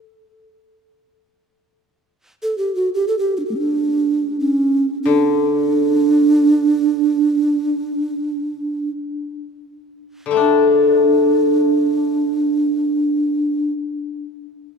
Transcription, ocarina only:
0, 0, Header, 1, 2, 480
1, 0, Start_track
1, 0, Tempo, 500000
1, 14190, End_track
2, 0, Start_track
2, 0, Title_t, "Ocarina"
2, 0, Program_c, 0, 79
2, 2329, Note_on_c, 0, 69, 80
2, 2468, Note_off_c, 0, 69, 0
2, 2474, Note_on_c, 0, 67, 82
2, 2635, Note_off_c, 0, 67, 0
2, 2641, Note_on_c, 0, 66, 77
2, 2778, Note_off_c, 0, 66, 0
2, 2825, Note_on_c, 0, 67, 80
2, 2934, Note_off_c, 0, 67, 0
2, 2954, Note_on_c, 0, 69, 80
2, 3053, Note_off_c, 0, 69, 0
2, 3059, Note_on_c, 0, 67, 79
2, 3212, Note_off_c, 0, 67, 0
2, 3231, Note_on_c, 0, 66, 77
2, 3251, Note_off_c, 0, 66, 0
2, 3254, Note_on_c, 0, 62, 35
2, 3310, Note_off_c, 0, 62, 0
2, 3315, Note_on_c, 0, 66, 41
2, 3334, Note_off_c, 0, 66, 0
2, 3336, Note_on_c, 0, 67, 47
2, 3362, Note_off_c, 0, 67, 0
2, 3368, Note_on_c, 0, 57, 48
2, 3410, Note_off_c, 0, 57, 0
2, 3416, Note_on_c, 0, 61, 54
2, 3438, Note_off_c, 0, 61, 0
2, 3444, Note_on_c, 0, 62, 79
2, 4198, Note_off_c, 0, 62, 0
2, 4222, Note_on_c, 0, 61, 80
2, 4787, Note_off_c, 0, 61, 0
2, 4827, Note_on_c, 0, 62, 85
2, 8545, Note_off_c, 0, 62, 0
2, 9987, Note_on_c, 0, 62, 72
2, 13158, Note_off_c, 0, 62, 0
2, 14190, End_track
0, 0, End_of_file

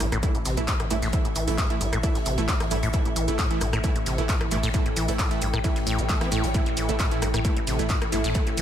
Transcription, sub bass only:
0, 0, Header, 1, 2, 480
1, 0, Start_track
1, 0, Tempo, 451128
1, 1203, Time_signature, 4, 2, 24, 8
1, 9170, End_track
2, 0, Start_track
2, 0, Title_t, "Sub bass"
2, 0, Program_c, 0, 38
2, 3, Note_on_c, 0, 33, 99
2, 122, Note_off_c, 0, 33, 0
2, 129, Note_on_c, 0, 33, 82
2, 241, Note_off_c, 0, 33, 0
2, 370, Note_on_c, 0, 33, 81
2, 477, Note_off_c, 0, 33, 0
2, 483, Note_on_c, 0, 33, 103
2, 603, Note_off_c, 0, 33, 0
2, 609, Note_on_c, 0, 33, 85
2, 721, Note_off_c, 0, 33, 0
2, 849, Note_on_c, 0, 33, 78
2, 957, Note_off_c, 0, 33, 0
2, 964, Note_on_c, 0, 33, 101
2, 1084, Note_off_c, 0, 33, 0
2, 1090, Note_on_c, 0, 33, 83
2, 1202, Note_off_c, 0, 33, 0
2, 1330, Note_on_c, 0, 33, 84
2, 1438, Note_off_c, 0, 33, 0
2, 1444, Note_on_c, 0, 33, 103
2, 1564, Note_off_c, 0, 33, 0
2, 1570, Note_on_c, 0, 33, 80
2, 1682, Note_off_c, 0, 33, 0
2, 1811, Note_on_c, 0, 33, 79
2, 1918, Note_off_c, 0, 33, 0
2, 1924, Note_on_c, 0, 33, 96
2, 2044, Note_off_c, 0, 33, 0
2, 2050, Note_on_c, 0, 33, 84
2, 2162, Note_off_c, 0, 33, 0
2, 2290, Note_on_c, 0, 33, 80
2, 2398, Note_off_c, 0, 33, 0
2, 2404, Note_on_c, 0, 33, 103
2, 2523, Note_off_c, 0, 33, 0
2, 2530, Note_on_c, 0, 33, 86
2, 2641, Note_off_c, 0, 33, 0
2, 2770, Note_on_c, 0, 33, 77
2, 2877, Note_off_c, 0, 33, 0
2, 2884, Note_on_c, 0, 33, 101
2, 3003, Note_off_c, 0, 33, 0
2, 3010, Note_on_c, 0, 33, 84
2, 3121, Note_off_c, 0, 33, 0
2, 3250, Note_on_c, 0, 33, 81
2, 3357, Note_off_c, 0, 33, 0
2, 3363, Note_on_c, 0, 33, 102
2, 3483, Note_off_c, 0, 33, 0
2, 3489, Note_on_c, 0, 33, 83
2, 3601, Note_off_c, 0, 33, 0
2, 3730, Note_on_c, 0, 33, 78
2, 3837, Note_off_c, 0, 33, 0
2, 3843, Note_on_c, 0, 33, 100
2, 3963, Note_off_c, 0, 33, 0
2, 3970, Note_on_c, 0, 33, 83
2, 4081, Note_off_c, 0, 33, 0
2, 4210, Note_on_c, 0, 33, 82
2, 4318, Note_off_c, 0, 33, 0
2, 4324, Note_on_c, 0, 33, 104
2, 4444, Note_off_c, 0, 33, 0
2, 4451, Note_on_c, 0, 33, 87
2, 4562, Note_off_c, 0, 33, 0
2, 4691, Note_on_c, 0, 33, 78
2, 4798, Note_off_c, 0, 33, 0
2, 4804, Note_on_c, 0, 33, 97
2, 4925, Note_off_c, 0, 33, 0
2, 4931, Note_on_c, 0, 33, 84
2, 5042, Note_off_c, 0, 33, 0
2, 5170, Note_on_c, 0, 33, 81
2, 5278, Note_off_c, 0, 33, 0
2, 5284, Note_on_c, 0, 33, 103
2, 5404, Note_off_c, 0, 33, 0
2, 5410, Note_on_c, 0, 33, 81
2, 5522, Note_off_c, 0, 33, 0
2, 5650, Note_on_c, 0, 33, 78
2, 5757, Note_off_c, 0, 33, 0
2, 5764, Note_on_c, 0, 33, 102
2, 5883, Note_off_c, 0, 33, 0
2, 5890, Note_on_c, 0, 33, 84
2, 6001, Note_off_c, 0, 33, 0
2, 6129, Note_on_c, 0, 33, 77
2, 6237, Note_off_c, 0, 33, 0
2, 6243, Note_on_c, 0, 33, 103
2, 6364, Note_off_c, 0, 33, 0
2, 6370, Note_on_c, 0, 33, 86
2, 6481, Note_off_c, 0, 33, 0
2, 6609, Note_on_c, 0, 33, 75
2, 6717, Note_off_c, 0, 33, 0
2, 6723, Note_on_c, 0, 33, 97
2, 6844, Note_off_c, 0, 33, 0
2, 6850, Note_on_c, 0, 33, 85
2, 6962, Note_off_c, 0, 33, 0
2, 7090, Note_on_c, 0, 33, 79
2, 7198, Note_off_c, 0, 33, 0
2, 7204, Note_on_c, 0, 33, 103
2, 7323, Note_off_c, 0, 33, 0
2, 7329, Note_on_c, 0, 33, 82
2, 7441, Note_off_c, 0, 33, 0
2, 7569, Note_on_c, 0, 33, 77
2, 7676, Note_off_c, 0, 33, 0
2, 7683, Note_on_c, 0, 33, 104
2, 7803, Note_off_c, 0, 33, 0
2, 7809, Note_on_c, 0, 33, 83
2, 7921, Note_off_c, 0, 33, 0
2, 8049, Note_on_c, 0, 33, 82
2, 8157, Note_off_c, 0, 33, 0
2, 8163, Note_on_c, 0, 33, 105
2, 8284, Note_off_c, 0, 33, 0
2, 8290, Note_on_c, 0, 33, 84
2, 8402, Note_off_c, 0, 33, 0
2, 8530, Note_on_c, 0, 33, 77
2, 8638, Note_off_c, 0, 33, 0
2, 8644, Note_on_c, 0, 33, 97
2, 8763, Note_off_c, 0, 33, 0
2, 8770, Note_on_c, 0, 33, 83
2, 8881, Note_off_c, 0, 33, 0
2, 9010, Note_on_c, 0, 33, 78
2, 9118, Note_off_c, 0, 33, 0
2, 9124, Note_on_c, 0, 33, 104
2, 9170, Note_off_c, 0, 33, 0
2, 9170, End_track
0, 0, End_of_file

